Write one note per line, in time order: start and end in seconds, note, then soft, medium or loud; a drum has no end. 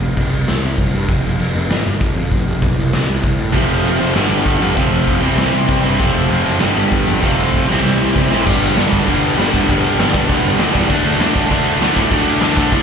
0.01 0.14 F1 medium
0.17 0.30 F1 loud
0.17 kick medium
0.17 crash medium
0.31 0.44 C2 medium
0.47 0.60 C2 loud
0.47 snare loud
0.47 crash medium
0.62 0.75 C2 loud
0.78 0.91 C2 loud
0.78 kick medium
0.78 crash medium
0.94 1.06 G2 medium
1.08 1.21 F1 medium
1.08 kick loud
1.08 crash medium
1.24 1.37 F1 medium
1.39 1.52 F1 loud
1.39 crash medium
1.54 1.68 F1 medium
1.70 1.83 G1 loud
1.70 snare loud
1.70 crash medium
1.85 1.98 G1 medium
2.01 2.14 G1 medium
2.01 kick medium
2.01 crash medium
2.15 2.29 F2 medium
2.32 2.45 F1 loud
2.32 kick loud
2.32 crash medium
2.47 2.60 F1 medium
2.62 2.75 B1 loud
2.62 kick medium
2.62 crash medium
2.78 2.91 C2 medium
2.93 3.06 C2 loud
2.93 snare loud
2.93 crash medium
3.09 3.22 C2 medium
3.23 3.36 C2 medium
3.23 kick medium
3.23 crash medium
3.38 3.52 A2 medium
3.52 3.67 F1 medium
3.52 3.98 F2 medium
3.52 3.99 C3 medium
3.52 3.99 F3 medium
3.52 3.98 A3 medium
3.52 3.97 C4 loud
3.52 kick medium
3.52 crash medium
3.69 3.82 F1 medium
3.84 3.98 F1 loud
3.84 crash medium
3.99 4.14 F1 medium
3.99 4.12 F2 medium
3.99 4.13 C3 medium
3.99 4.14 F3 medium
3.99 4.14 A3 medium
3.99 4.14 C4 medium
4.13 4.28 G1 loud
4.13 4.59 G2 medium
4.13 4.60 D3 medium
4.13 4.60 G3 medium
4.13 4.59 B3 medium
4.13 4.58 D4 loud
4.13 snare loud
4.13 crash medium
4.29 4.43 G1 medium
4.45 4.58 G1 medium
4.45 kick medium
4.45 crash medium
4.58 4.73 F2 medium
4.58 4.74 D3 medium
4.58 4.75 G3 medium
4.58 4.76 B3 medium
4.58 4.75 D4 medium
4.63 4.77 G2 medium
4.74 4.89 F1 medium
4.74 5.21 F2 medium
4.74 5.19 C3 medium
4.74 5.21 F3 medium
4.74 5.21 A3 loud
4.74 5.22 C4 medium
4.74 5.23 F4 loud
4.74 kick medium
4.74 crash medium
4.78 5.22 F3 loud
4.90 5.04 F1 medium
5.07 5.20 F1 loud
5.07 kick medium
5.07 crash medium
5.20 5.35 C2 medium
5.20 5.65 C3 medium
5.20 5.66 E3 loud
5.20 5.67 G3 medium
5.20 5.68 C4 medium
5.20 5.69 E4 medium
5.36 5.50 C2 loud
5.36 snare loud
5.36 crash medium
5.53 5.66 C2 medium
5.66 5.82 C2 loud
5.66 5.97 C3 medium
5.66 5.97 E3 medium
5.66 5.99 G3 medium
5.66 5.99 C4 loud
5.66 kick medium
5.66 crash medium
5.70 5.99 E4 medium
5.81 5.97 G2 medium
5.81 5.99 G3 medium
5.81 5.98 C4 medium
5.86 5.98 C3 medium
5.98 6.13 F1 loud
5.98 6.58 F2 medium
5.98 6.60 C3 loud
5.98 6.44 F3 medium
5.98 6.45 A3 medium
5.98 6.44 C4 medium
5.98 6.42 F4 loud
5.98 kick loud
5.98 crash medium
6.14 6.28 F1 medium
6.29 6.43 F1 loud
6.29 crash medium
6.43 6.59 F#1 medium
6.43 6.59 A3 medium
6.43 6.60 C4 medium
6.43 6.59 F4 medium
6.47 6.58 F3 medium
6.58 6.74 G1 medium
6.58 7.19 G2 loud
6.58 7.21 D3 loud
6.58 7.05 G3 medium
6.58 7.06 B3 loud
6.58 7.06 D4 medium
6.58 7.05 G4 medium
6.58 snare loud
6.58 crash medium
6.76 6.90 G1 loud
6.92 7.05 G1 medium
6.92 kick medium
6.92 crash medium
7.06 7.20 F2 medium
7.06 7.23 B3 medium
7.06 7.22 D4 medium
7.06 7.21 G4 medium
7.10 7.21 G3 medium
7.20 7.36 F1 medium
7.20 7.66 F2 medium
7.20 7.66 C3 loud
7.20 7.67 F3 medium
7.20 kick loud
7.20 snare medium
7.24 7.68 A3 loud
7.24 7.69 C4 medium
7.24 7.69 F4 loud
7.38 7.51 F1 medium
7.38 snare medium
7.54 7.67 F1 loud
7.54 kick medium
7.67 7.81 C2 medium
7.67 8.12 C3 medium
7.67 8.13 E3 medium
7.67 8.14 G3 loud
7.67 8.15 C4 medium
7.67 8.15 E4 loud
7.67 snare medium
7.84 7.97 C2 loud
7.84 snare medium
8.00 8.13 C2 medium
8.13 8.28 C2 medium
8.13 8.44 C3 medium
8.13 8.44 E3 medium
8.13 8.45 G3 medium
8.13 8.45 C4 medium
8.13 8.45 E4 medium
8.13 kick medium
8.13 snare loud
8.30 8.44 A2 medium
8.30 8.45 C3 medium
8.30 8.45 G3 medium
8.30 8.44 C4 medium
8.30 snare medium
8.45 8.57 G1 loud
8.45 8.76 G2 loud
8.45 8.76 D3 loud
8.45 8.77 G3 loud
8.45 8.78 B3 loud
8.45 8.78 D4 loud
8.45 kick loud
8.45 crash loud
8.45 crash medium
8.62 8.72 G1 medium
8.62 crash medium
8.77 8.88 G1 loud
8.77 8.93 G2 loud
8.77 8.92 D3 medium
8.77 8.92 G3 medium
8.77 8.91 B3 medium
8.77 8.91 D4 loud
8.77 snare loud
8.77 crash medium
8.92 9.03 G1 medium
8.92 9.04 G2 medium
8.92 9.05 D3 medium
8.92 9.06 G3 medium
8.92 9.06 B3 medium
8.92 9.08 D4 medium
8.92 kick medium
8.92 crash medium
9.06 9.29 G1 loud
9.06 9.35 G2 medium
9.06 9.36 D3 medium
9.06 9.37 G3 loud
9.06 9.37 B3 loud
9.06 9.39 D4 medium
9.06 kick loud
9.06 crash medium
9.24 crash medium
9.36 9.47 G1 loud
9.36 9.53 G2 medium
9.36 9.52 D3 loud
9.36 9.52 G3 medium
9.36 9.51 B3 loud
9.36 9.51 D4 loud
9.36 snare loud
9.36 crash loud
9.51 9.63 D2 loud
9.51 9.65 G2 medium
9.51 9.66 D3 medium
9.51 9.66 G3 medium
9.51 9.67 B3 medium
9.51 9.68 D4 medium
9.51 kick medium
9.51 crash medium
9.66 9.89 G1 loud
9.66 9.96 G2 loud
9.66 9.97 D3 medium
9.66 9.98 G3 loud
9.66 9.98 B3 loud
9.66 10.00 D4 loud
9.66 kick loud
9.66 crash medium
9.84 crash medium
9.97 10.19 G1 loud
9.97 10.14 G2 loud
9.97 10.14 D3 loud
9.97 10.13 G3 loud
9.97 10.13 B3 loud
9.97 10.13 D4 loud
9.97 snare loud
9.97 crash medium
10.13 10.27 G2 medium
10.13 10.28 D3 medium
10.13 10.28 G3 medium
10.13 10.29 B3 loud
10.13 10.31 D4 medium
10.13 kick loud
10.13 crash medium
10.28 10.40 D2 loud
10.28 10.56 G2 loud
10.28 10.57 D3 loud
10.28 10.58 G3 loud
10.28 10.58 B3 loud
10.28 10.59 D4 medium
10.28 kick loud
10.28 crash medium
10.44 10.55 G1 loud
10.44 crash medium
10.58 10.70 D2 loud
10.58 10.74 G2 medium
10.58 10.73 D3 loud
10.58 10.73 G3 loud
10.58 10.72 B3 loud
10.58 10.73 D4 loud
10.58 snare loud
10.58 crash medium
10.73 10.85 E2 loud
10.73 10.89 G2 medium
10.73 10.87 D3 medium
10.73 10.88 G3 medium
10.73 10.88 B3 medium
10.73 10.89 D4 loud
10.73 kick medium
10.73 crash medium
10.88 11.00 D2 loud
10.88 11.19 D3 loud
10.88 11.19 F#3 loud
10.88 11.20 A3 loud
10.88 11.21 D4 loud
10.88 kick loud
10.88 crash medium
11.05 11.15 D2 medium
11.05 crash medium
11.19 11.30 D2 loud
11.19 11.34 D3 medium
11.19 11.34 F#3 loud
11.19 11.33 A3 loud
11.19 11.32 D4 loud
11.19 snare loud
11.19 crash loud
11.33 11.46 D2 loud
11.33 11.49 D3 medium
11.33 11.49 F#3 medium
11.33 11.49 A3 medium
11.33 11.50 D4 loud
11.33 kick medium
11.33 crash medium
11.50 11.72 D2 loud
11.50 11.78 D3 loud
11.50 11.78 F#3 loud
11.50 11.79 A3 loud
11.50 11.80 D4 loud
11.50 kick medium
11.50 crash medium
11.66 crash medium
11.79 11.92 D2 medium
11.79 11.96 D3 loud
11.79 11.95 F#3 medium
11.79 11.95 A3 loud
11.79 11.95 D4 loud
11.79 snare loud
11.79 crash loud
11.96 12.06 A2 medium
11.96 12.10 D3 medium
11.96 12.11 F#3 medium
11.96 12.11 A3 medium
11.96 12.12 D4 loud
11.96 kick medium
11.96 crash medium
12.11 12.32 D2 loud
12.11 12.40 D3 loud
12.11 12.40 F#3 medium
12.11 12.41 A3 loud
12.11 12.41 D4 loud
12.11 kick medium
12.11 crash medium
12.26 crash medium
12.41 12.63 D2 loud
12.41 12.56 D3 medium
12.41 12.56 F#3 medium
12.41 12.55 A3 loud
12.41 12.54 D4 loud
12.41 snare loud
12.41 crash medium
12.56 12.68 D3 medium
12.56 12.69 F#3 medium
12.56 12.69 A3 medium
12.56 12.70 D4 loud
12.56 kick loud
12.56 crash medium
12.70 12.83 A2 loud
12.70 12.83 D3 loud
12.70 12.83 F#3 loud
12.70 12.83 A3 loud
12.70 12.83 D4 loud
12.70 kick loud
12.70 crash medium